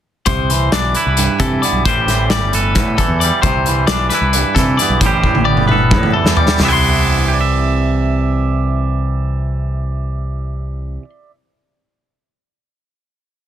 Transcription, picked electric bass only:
0.26 C2
0.72 B1
1.06 C2
1.40 C3
1.72 B1
1.85 A1
2.06 A1
2.41 G1
2.75 A2
3.08 E2
3.43 C2
3.88 B1
4.21 C2
4.56 C3
4.90 B1
5.01 A1
5.23 A1
5.55 G1
5.92 A2
6.24 E2
6.60 C2

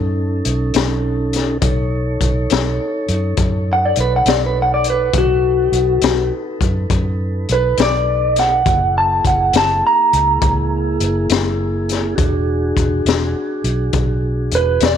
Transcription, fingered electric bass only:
Already playing: F#2
0.46 B1
0.75 B1
1.62 B1
2.21 B1
2.51 B1
3.09 F#2
3.37 F#2
3.97 B1
4.26 B1
5.14 B1
5.72 B1
6.02 B1
6.61 F#2
6.90 F#2
7.50 B1
7.78 B1
8.66 F#1
9.25 F#1
9.54 F#1
10.13 C#2
10.42 C#2
11.00 F#1
11.30 F#1
12.18 E1
12.77 E1
13.05 E1
13.64 B1
13.94 B1
14.52 E1
14.82 E1

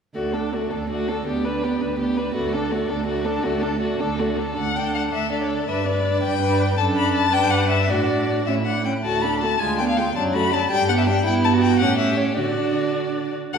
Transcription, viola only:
0.14 A3
0.33 D4
0.53 A3
0.71 D4
0.90 A3
1.08 D4
1.26 B3
1.45 D4
1.63 B3
1.82 D4
2.00 B3
2.17 D4
2.36 A3
2.54 D4
2.72 A3
2.89 D4
3.07 A3
3.25 D4
3.44 A3
3.62 D4
3.81 A3
4.00 D4
4.19 A3
4.39 D4
4.76 D4
5.32 D4
5.69 D4
5.87 D4
6.42 D4
6.78 D4
7.34 D4
7.90 D4
8.48 C#4
8.67 D4
8.86 C#4
9.05 A3
9.24 D4
9.43 A3
9.62 G#3
9.80 B3
9.98 G#3
10.16 F#3
10.35 A3
10.53 F#3
10.71 G3
10.89 B3
11.07 G3
11.26 B3
11.81 C#4
12.37 D4
13.54 F#4

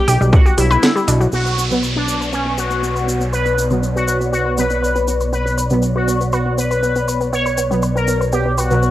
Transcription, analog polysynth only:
Already playing: G4
0.33 F#4
0.58 E4
1.33 F#4
1.96 D4
2.33 C#4
2.58 F#4
3.33 B4
3.96 F#4
4.33 F#4
4.58 B4
5.33 B4
5.96 F#4
6.33 F#4
6.58 B4
7.33 C#5
7.96 A#4
8.33 G4
8.58 F#4

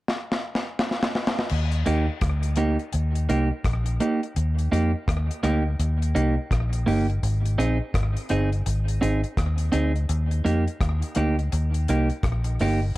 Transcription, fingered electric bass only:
1.51 D#2
1.87 D#2
2.22 D2
2.94 D#2
3.29 C2
3.65 A#1
4.36 D#2
4.72 F2
5.08 D#2
5.43 D2
5.79 D#2
6.15 C2
6.52 A#1
6.87 G1
7.23 G#1
7.58 A#1
7.95 G#1
8.31 G1
8.66 G#1
9.03 G#1
9.38 D#2
9.74 D2
10.09 D#2
10.45 F2
10.81 D#2
11.17 D2
11.53 D#2
11.89 C2
12.23 A#1
12.60 G1

